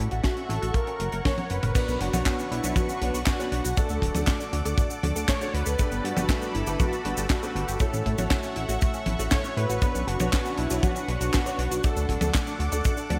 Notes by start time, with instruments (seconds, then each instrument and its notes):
Already playing: analog synth pad A4 E5 F#5 C#6
0.11 analog synth bass A1, synth arpeggio sound F#4, closed hi-hat
0.24 synth arpeggio sound A3, analog synth lead F#4, kick, snare, closed hi-hat
0.37 synth arpeggio sound C#4, closed hi-hat
0.49 analog synth bass A1, synth arpeggio sound E4, analog synth lead A4, snare, closed hi-hat
0.62 analog synth bass A1, synth arpeggio sound F#4, closed hi-hat
0.74 synth arpeggio sound A#3, analog synth pad A#4 C#5 F#5, analog synth lead A#4, kick, closed hi-hat
0.87 synth arpeggio sound C#4, closed hi-hat
1.00 analog synth bass F#1, synth arpeggio sound F#4, closed hi-hat
1.12 analog synth bass F#1, synth arpeggio sound A#4, closed hi-hat
1.25 synth arpeggio sound A#3, analog synth lead C#5, kick, snare, closed hi-hat, high tom
1.38 synth arpeggio sound C#4, closed hi-hat, high tom
1.50 analog synth bass F#1, synth arpeggio sound F#4, analog synth lead B4, closed hi-hat
1.63 analog synth bass F#1, synth arpeggio sound A#4, closed hi-hat, mid tom
1.75 grand piano B3 D4 F#4 C#5, synth arpeggio sound B3, analog synth pad D4 B4 F#5 C#6, kick, closed hi-hat, crash, cabasa
1.88 analog synth bass B1, synth arpeggio sound C#4, closed hi-hat, cabasa
2.00 analog synth bass F#1, synth arpeggio sound D4, analog synth lead F#4, closed hi-hat
2.13 analog synth bass B1, grand piano B3 D4 F#4 C#5, synth arpeggio sound F#4, closed hi-hat, high tom, cabasa
2.25 synth arpeggio sound B3, kick, snare, clap, closed hi-hat, cabasa
2.38 synth arpeggio sound C#4, closed hi-hat, cabasa
2.51 analog synth bass B1, synth arpeggio sound D4, analog synth lead E4, closed hi-hat
2.64 analog synth bass B1, grand piano B3 D4 F#4 C#5, synth arpeggio sound F#4, closed hi-hat, cabasa
2.76 synth arpeggio sound B3, analog synth lead F#4, kick, closed hi-hat, high tom, cabasa
2.89 synth arpeggio sound C#4, closed hi-hat, cabasa
3.01 analog synth bass B1, grand piano B3 D4 F#4 C#5, synth arpeggio sound D4, closed hi-hat
3.14 analog synth bass B1, synth arpeggio sound F#4, closed hi-hat, cabasa
3.26 synth arpeggio sound B3, analog synth lead F#4, kick, snare, clap, closed hi-hat, cabasa
3.39 grand piano B3 D4 F#4 C#5, synth arpeggio sound C#4, closed hi-hat, cabasa
3.52 analog synth bass B1, synth arpeggio sound D4, closed hi-hat
3.64 analog synth bass B1, synth arpeggio sound F#4, closed hi-hat, cabasa
3.77 synth arpeggio sound A3, grand piano A3 D4 F#4 D5, analog synth lead A4, analog synth pad A4 D5 D6, kick, closed hi-hat, cabasa
3.89 analog synth bass D2, synth arpeggio sound D4, closed hi-hat, cabasa
4.02 analog synth bass D1, synth arpeggio sound F#4, kick, closed hi-hat
4.14 analog synth bass D2, grand piano A3 D4 F#4 D5, synth arpeggio sound A4, closed hi-hat, high tom, cabasa
4.27 synth arpeggio sound A3, kick, snare, clap, closed hi-hat, cabasa
4.40 synth arpeggio sound D4, closed hi-hat, cabasa
4.53 analog synth bass D2, synth arpeggio sound F#4, closed hi-hat
4.65 analog synth bass D2, grand piano A3 D4 F#4 D5, synth arpeggio sound A4, closed hi-hat, cabasa
4.78 synth arpeggio sound A3, kick, closed hi-hat, cabasa
4.90 synth arpeggio sound D4, closed hi-hat, cabasa
5.03 analog synth bass D2, grand piano A3 D4 F#4 D5, synth arpeggio sound F#4, closed hi-hat, high tom
5.16 analog synth bass D2, synth arpeggio sound A4, closed hi-hat, cabasa
5.28 synth arpeggio sound A3, analog synth lead C#5, kick, snare, clap, closed hi-hat, cabasa
5.41 grand piano A3 D4 F#4 D5, synth arpeggio sound D4, closed hi-hat, cabasa
5.54 analog synth bass D2, synth arpeggio sound F#4, analog synth lead B4, closed hi-hat
5.66 analog synth bass D2, synth arpeggio sound A4, closed hi-hat, cabasa
5.79 grand piano A3 D4 G4 B4, synth arpeggio sound A3, analog synth pad A5 B5, kick, closed hi-hat, cabasa
5.92 analog synth bass G1, synth arpeggio sound B3, closed hi-hat, cabasa
6.04 analog synth bass G2, synth arpeggio sound D4, analog synth lead F#4, closed hi-hat
6.17 analog synth bass G1, grand piano G3 A3 D4 B4, synth arpeggio sound G4, closed hi-hat, high tom, cabasa
6.29 synth arpeggio sound A3, kick, snare, clap, closed hi-hat, cabasa
6.41 synth arpeggio sound B3, closed hi-hat, cabasa
6.54 analog synth bass G1, synth arpeggio sound D4, analog synth lead E4, closed hi-hat
6.67 analog synth bass G1, grand piano A3 D4 G4 B4, synth arpeggio sound G4, closed hi-hat, cabasa
6.80 synth arpeggio sound A3, analog synth lead F#4, kick, closed hi-hat, high tom, cabasa
6.92 synth arpeggio sound B3, closed hi-hat, cabasa
7.05 analog synth bass G1, grand piano A3 D4 G4 B4, synth arpeggio sound D4, closed hi-hat
7.17 analog synth bass G1, synth arpeggio sound G4, closed hi-hat, cabasa
7.30 synth arpeggio sound A3, analog synth lead F#4, kick, snare, clap, closed hi-hat, cabasa
7.43 grand piano A3 D4 G4 B4, synth arpeggio sound B3, closed hi-hat, cabasa
7.55 analog synth bass G1, synth arpeggio sound D4, closed hi-hat
7.68 analog synth bass G1, synth arpeggio sound G4, closed hi-hat, cabasa
7.80 synth arpeggio sound A3, grand piano A3 E4 F#4 C#5, analog synth lead A4, analog synth pad E5 F#5 C#6, kick, closed hi-hat, cabasa
7.93 analog synth bass A1, synth arpeggio sound C#4, closed hi-hat, cabasa
8.06 analog synth bass A2, synth arpeggio sound E4, kick, closed hi-hat
8.18 analog synth bass A1, grand piano A3 E4 F#4 C#5, synth arpeggio sound F#4, closed hi-hat, high tom, cabasa
8.30 synth arpeggio sound A3, kick, snare, clap, closed hi-hat, cabasa
8.43 synth arpeggio sound C#4, closed hi-hat, cabasa
8.56 analog synth bass A1, synth arpeggio sound E4, closed hi-hat
8.69 analog synth bass A1, grand piano A3 E4 F#4 C#5, synth arpeggio sound F#4, closed hi-hat, cabasa
8.81 synth arpeggio sound A3, kick, closed hi-hat, cabasa
8.94 synth arpeggio sound C#4, closed hi-hat, cabasa
9.06 analog synth bass A1, synth arpeggio sound E4, closed hi-hat, high tom
9.19 analog synth bass A1, grand piano A3 E4 F#4 C#5, synth arpeggio sound F#4, closed hi-hat, cabasa
9.31 synth arpeggio sound A3, analog synth lead C#5, kick, snare, clap, closed hi-hat, cabasa
9.44 synth arpeggio sound C#4, closed hi-hat, cabasa
9.57 analog synth bass A2, grand piano A3 E4 F#4 C#5, synth arpeggio sound E4, analog synth lead B4, closed hi-hat
9.70 analog synth bass A1, synth arpeggio sound F#4, closed hi-hat, cabasa
9.82 synth arpeggio sound B3, grand piano B3 D4 F#4 C#5, analog synth pad D4 B4 F#5, kick, closed hi-hat, cabasa
9.95 analog synth bass B1, synth arpeggio sound C#4, closed hi-hat, cabasa
10.07 analog synth bass F#1, synth arpeggio sound D4, analog synth lead F#4, closed hi-hat
10.19 analog synth bass B1, grand piano B3 D4 F#4 C#5, synth arpeggio sound F#4, closed hi-hat, high tom, cabasa
10.33 synth arpeggio sound B3, kick, snare, clap, closed hi-hat, cabasa
10.45 synth arpeggio sound C#4, closed hi-hat, cabasa
10.57 analog synth bass B1, synth arpeggio sound D4, analog synth lead E4, closed hi-hat
10.70 analog synth bass B1, grand piano B3 D4 F#4 C#5, synth arpeggio sound F#4, closed hi-hat, cabasa
10.83 synth arpeggio sound B3, analog synth lead F#4, kick, closed hi-hat, high tom, cabasa
10.96 synth arpeggio sound C#4, closed hi-hat, cabasa
11.08 analog synth bass B1, grand piano B3 D4 F#4 C#5, synth arpeggio sound D4, closed hi-hat
11.21 analog synth bass B1, synth arpeggio sound F#4, closed hi-hat, cabasa
11.33 synth arpeggio sound B3, analog synth lead F#4, kick, snare, clap, closed hi-hat, cabasa
11.46 grand piano B3 D4 F#4 C#5, synth arpeggio sound C#4, closed hi-hat, cabasa
11.59 analog synth bass B1, synth arpeggio sound D4, closed hi-hat
11.71 analog synth bass B1, synth arpeggio sound F#4, closed hi-hat, cabasa
11.84 grand piano A3 D4 F#4 D5, synth arpeggio sound A3, analog synth pad A4 F#5 D6, analog synth lead A4, kick, closed hi-hat, cabasa
11.96 analog synth bass D2, synth arpeggio sound D4, closed hi-hat, cabasa
12.09 analog synth bass D1, synth arpeggio sound F#4, kick, closed hi-hat
12.21 analog synth bass D2, grand piano A3 D4 F#4 D5, synth arpeggio sound A4, closed hi-hat, high tom, cabasa
12.34 synth arpeggio sound A3, kick, snare, clap, closed hi-hat, cabasa
12.47 synth arpeggio sound D4, closed hi-hat, cabasa
12.59 analog synth bass D2, synth arpeggio sound F#4, closed hi-hat
12.72 analog synth bass D2, grand piano A3 D4 F#4 D5, synth arpeggio sound A4, closed hi-hat, cabasa
12.85 synth arpeggio sound A3, kick, closed hi-hat, cabasa
12.97 synth arpeggio sound D4, closed hi-hat, cabasa
13.10 analog synth bass D2, grand piano A3 D4 F#4 D5, synth arpeggio sound F#4, closed hi-hat, high tom